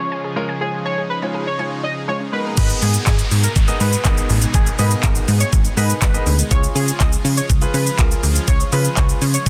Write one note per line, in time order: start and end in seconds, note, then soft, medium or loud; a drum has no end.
0.00 2.29 C#3 medium
0.00 2.30 F3 medium
0.00 2.29 G#3 medium
0.00 0.10 C#4 medium
0.00 0.59 F4 medium
0.00 2.29 G#4 medium
0.00 0.22 C#5 medium
0.12 0.23 G#5 medium
0.24 0.35 G#4 medium
0.36 0.48 G#3 medium
0.36 0.48 C#4 medium
0.36 0.48 F4 medium
0.36 0.48 A#4 loud
0.49 0.60 G#5 medium
0.61 0.90 G#3 medium
0.61 0.90 C#4 medium
0.61 2.31 D#4 medium
0.61 0.90 F4 medium
0.61 0.77 G#4 medium
0.61 0.90 C#5 medium
0.85 1.02 C#5 medium
0.85 0.96 G#5 medium
0.98 1.09 G#4 medium
1.10 1.18 B4 medium
1.22 1.40 G#3 medium
1.22 1.40 C#4 medium
1.22 1.40 F4 medium
1.22 1.40 C#5 medium
1.22 1.33 G#5 medium
1.34 1.45 G#4 medium
1.47 1.58 C#4 medium
1.47 1.64 C#5 medium
1.59 1.82 G#3 medium
1.59 1.83 C#4 medium
1.59 1.83 F4 medium
1.59 1.83 C#5 medium
1.59 1.70 G#5 loud
1.83 1.95 C#4 medium
1.83 1.92 D#5 medium
2.08 2.20 G#3 medium
2.08 2.20 C#4 medium
2.08 2.20 F4 medium
2.08 2.19 G#4 medium
2.08 2.17 C#5 medium
2.08 2.20 C#5 medium
2.20 2.31 C#4 medium
2.32 2.56 B2 medium
2.32 2.52 G#3 medium
2.32 2.56 G#3 medium
2.32 2.57 A#3 medium
2.32 2.52 B3 medium
2.32 2.53 D#4 medium
2.32 2.56 D#4 medium
2.32 2.56 G#4 medium
2.32 2.53 A#4 medium
2.32 2.41 B4 medium
2.45 2.56 A#4 medium
2.57 2.73 G#1 loud
2.57 6.47 B2 medium
2.57 9.49 G#3 medium
2.57 3.04 B3 medium
2.57 6.47 B3 medium
2.57 6.47 D#4 medium
2.57 3.04 D#4 medium
2.57 6.47 G#4 loud
2.57 3.04 G#4 medium
2.57 3.04 A#4 medium
2.57 2.74 B4 loud
2.57 3.05 D#5 medium
2.57 kick loud
2.57 closed hi-hat medium
2.57 crash loud
2.57 downlifter medium
2.57 shaker medium
2.70 closed hi-hat medium
2.70 shaker medium
2.82 2.98 G#2 loud
2.82 2.99 G#4 medium
2.82 open hi-hat medium
2.82 shaker medium
2.94 closed hi-hat medium
2.94 shaker medium
3.06 3.23 G#1 loud
3.06 3.15 G#4 medium
3.06 kick loud
3.06 clap loud
3.06 closed hi-hat medium
3.06 shaker medium
3.19 closed hi-hat medium
3.19 shaker medium
3.31 3.47 G#2 loud
3.31 open hi-hat medium
3.31 shaker soft
3.44 3.52 A#4 medium
3.44 closed hi-hat medium
3.44 shaker medium
3.56 3.72 G#1 loud
3.56 kick loud
3.56 closed hi-hat medium
3.56 shaker medium
3.68 3.86 B3 medium
3.68 3.86 D#4 medium
3.68 3.86 G#4 medium
3.68 3.86 A#4 medium
3.68 3.86 D#5 loud
3.68 closed hi-hat soft
3.68 shaker medium
3.80 3.96 G#2 loud
3.80 4.15 B4 medium
3.80 open hi-hat medium
3.80 shaker medium
3.93 closed hi-hat medium
3.93 shaker medium
4.05 4.21 G#1 loud
4.05 4.28 B3 medium
4.05 4.29 D#4 medium
4.05 4.29 G#4 medium
4.05 4.29 A#4 medium
4.05 4.29 D#5 medium
4.05 kick loud
4.05 clap loud
4.05 closed hi-hat medium
4.05 shaker medium
4.17 closed hi-hat medium
4.17 shaker medium
4.30 4.46 A1 medium
4.30 open hi-hat medium
4.30 shaker medium
4.42 closed hi-hat medium
4.42 shaker medium
4.54 4.70 G#1 loud
4.54 4.71 G#4 loud
4.54 4.60 A#4 soft
4.54 4.60 D#5 medium
4.54 kick loud
4.54 closed hi-hat medium
4.54 shaker medium
4.66 4.72 A#4 soft
4.66 4.73 D#5 medium
4.66 closed hi-hat medium
4.66 shaker medium
4.78 4.95 G#2 loud
4.78 5.26 B3 medium
4.78 5.26 D#4 medium
4.78 5.26 G#4 medium
4.78 5.26 A#4 medium
4.78 4.96 B4 loud
4.78 5.26 D#5 medium
4.78 open hi-hat medium
4.78 shaker medium
4.91 closed hi-hat medium
4.91 shaker medium
5.03 5.20 G#1 loud
5.03 5.12 A#4 medium
5.03 kick loud
5.03 clap loud
5.03 closed hi-hat medium
5.03 shaker medium
5.15 closed hi-hat medium
5.15 shaker medium
5.28 5.44 G#2 loud
5.28 open hi-hat medium
5.28 shaker medium
5.40 5.49 C#5 medium
5.40 closed hi-hat medium
5.40 shaker medium
5.53 5.69 G#1 loud
5.53 kick loud
5.53 closed hi-hat medium
5.53 shaker medium
5.65 closed hi-hat medium
5.65 shaker medium
5.77 5.93 G#2 loud
5.77 5.95 B3 medium
5.77 5.95 D#4 medium
5.77 5.95 G#4 medium
5.77 5.95 A#4 medium
5.77 5.94 B4 medium
5.77 5.95 D#5 loud
5.77 open hi-hat medium
5.77 shaker medium
5.90 closed hi-hat medium
5.90 shaker medium
6.02 6.18 G#1 loud
6.02 6.37 B4 medium
6.02 kick loud
6.02 clap loud
6.02 closed hi-hat medium
6.02 shaker medium
6.14 6.26 B3 medium
6.14 6.26 D#4 medium
6.14 6.26 G#4 medium
6.14 6.26 A#4 medium
6.14 6.26 D#5 medium
6.14 closed hi-hat medium
6.14 shaker medium
6.26 6.42 D2 medium
6.26 open hi-hat medium
6.26 shaker medium
6.38 6.44 A#4 soft
6.38 6.45 D#5 medium
6.38 closed hi-hat medium
6.38 shaker medium
6.51 6.67 C#2 loud
6.51 9.49 C#3 medium
6.51 9.49 F3 medium
6.51 6.98 F4 medium
6.51 9.49 F4 medium
6.51 6.98 G#4 medium
6.51 9.49 G#4 medium
6.51 6.68 C#5 loud
6.51 6.98 C#5 medium
6.51 kick loud
6.51 closed hi-hat medium
6.51 shaker medium
6.64 closed hi-hat medium
6.64 shaker medium
6.75 6.91 C#3 loud
6.75 6.92 G#4 medium
6.75 open hi-hat medium
6.75 shaker medium
6.88 closed hi-hat medium
6.88 shaker medium
7.00 7.16 C#2 loud
7.00 7.08 D#5 medium
7.00 kick loud
7.00 clap loud
7.00 closed hi-hat medium
7.00 shaker medium
7.13 closed hi-hat medium
7.13 shaker medium
7.25 7.41 C#3 loud
7.25 open hi-hat medium
7.25 shaker soft
7.37 7.46 C#5 medium
7.37 closed hi-hat medium
7.37 shaker medium
7.50 7.66 C#2 loud
7.50 kick loud
7.50 closed hi-hat medium
7.50 shaker medium
7.61 7.79 F4 medium
7.61 7.79 G#4 medium
7.61 7.79 B4 loud
7.61 closed hi-hat medium
7.61 shaker medium
7.74 7.90 C#3 loud
7.74 8.09 B4 medium
7.74 open hi-hat medium
7.74 shaker medium
7.87 closed hi-hat medium
7.87 shaker medium
7.98 8.15 C#2 loud
7.98 8.22 F4 medium
7.98 8.22 G#4 medium
7.98 8.22 A#4 loud
7.98 kick loud
7.98 clap loud
7.98 closed hi-hat medium
7.98 shaker medium
8.11 closed hi-hat medium
8.11 shaker medium
8.23 8.39 D2 medium
8.23 open hi-hat medium
8.23 shaker medium
8.36 closed hi-hat medium
8.36 shaker medium
8.47 8.64 C#2 loud
8.47 8.53 G#4 soft
8.47 8.54 C#5 soft
8.47 8.65 C#5 loud
8.47 kick loud
8.47 closed hi-hat medium
8.47 shaker medium
8.60 8.66 G#4 soft
8.60 8.66 C#5 medium
8.60 closed hi-hat medium
8.60 shaker medium
8.72 8.88 C#3 loud
8.72 9.19 F4 medium
8.72 9.19 G#4 medium
8.72 9.19 B4 medium
8.72 8.89 B4 medium
8.72 open hi-hat medium
8.72 shaker medium
8.85 closed hi-hat medium
8.85 shaker medium
8.97 9.13 C#2 loud
8.97 9.05 C#5 medium
8.97 kick loud
8.97 clap loud
8.97 closed hi-hat medium
8.97 shaker medium
9.09 closed hi-hat medium
9.09 shaker medium
9.22 9.38 C#3 loud
9.22 open hi-hat medium
9.22 shaker medium
9.34 9.49 C#5 medium
9.34 closed hi-hat medium
9.34 shaker medium
9.46 9.49 C#2 loud
9.46 kick loud
9.46 closed hi-hat medium
9.46 shaker medium